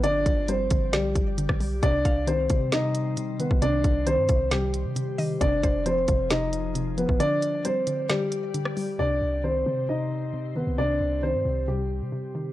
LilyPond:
<<
  \new Staff \with { instrumentName = "Synth pluck" } { \time 4/4 \key c \minor \tempo 4 = 134 r2 d''2 | r8 f''2.~ f''8 | r2. r8 ees''8 | r8 c''2.~ c''8 |
r2 d''2 | r1 | r1 | }
  \new Staff \with { instrumentName = "Ambient pad" } { \time 4/4 \key c \minor << { d''1 | c''1~ | c''1~ | c''1 |
d''1 | c''1~ | c''1 | } \\ { <g g'>1 | <c ees>1~ | <c ees>1 | <f f' aes'>1 |
<g g'>1 | <c c' g'>1~ | <c c' g'>1 | } >> }
  \new Staff \with { instrumentName = "Grand piano" } { \time 4/4 \key c \minor <d' d''>4 <c' c''>4 <g g'>2 | <d' d''>4 <c' c''>4 <ees' ees''>4. <b b'>8 | <d' d''>4 <c' c''>4 <g g'>2 | <d' d''>4 <c' c''>4 <ees' ees''>4. <b b'>8 |
<d' d''>4 <c' c''>4 <g g'>2 | <d' d''>4 <c' c''>4 <ees' ees''>4. <b b'>8 | <d' d''>4 <c' c''>4 <g g'>2 | }
  \new Staff \with { instrumentName = "Synth pluck" } { \clef bass \time 4/4 \key c \minor d4 g8 d8 d4 d8 g8 | c4 ees8 c8 c4 c8 ees8 | c4 ees8 c8 c4 c8 ees8 | c4 f8 c8 c4 c8 f8 |
d4 g8 d8 d4 d8 g8 | c4 ees8 c8 c4 c8 ees8 | c4 ees8 c8 c4 c8 ees8 | }
  \new Staff \with { instrumentName = "808-style bass" } { \clef bass \time 4/4 \key c \minor g,,8 g,,4 g,,8 b,,8 g,,8. b,,8. | c,8 c,4 c2~ c16 c,16~ | c,8 c,8. g,16 c,4~ c,16 c4~ c16 | f,,8 f,,4 f,,2~ f,,16 g,,16 |
r1 | c,8 c,4 c2~ c16 c,16~ | c,8 c,8. g,16 c,4~ c,16 c4~ c16 | }
  \new DrumStaff \with { instrumentName = "Drums" } \drummode { \time 4/4 hh8 <hh bd>8 hh8 <hh bd>8 <hh sn>8 <hh bd>8 hh16 <bd ss>16 hho8 | <hh bd>8 <hh bd>8 hh8 <hh bd>8 <hh sn>8 hh8 hh8 hh16 bd16 | hh8 <hh bd>8 hh8 <hh bd>8 <hh sn>8 hh8 hh8 hho8 | <hh bd>8 <hh bd>8 hh8 <hh bd>8 <hh sn>8 hh8 hh8 hh16 bd16 |
hh8 hh8 hh8 hh8 <hh sn>8 hh8 hh16 ss16 hho8 | r4 r4 r4 r4 | r4 r4 r4 r4 | }
>>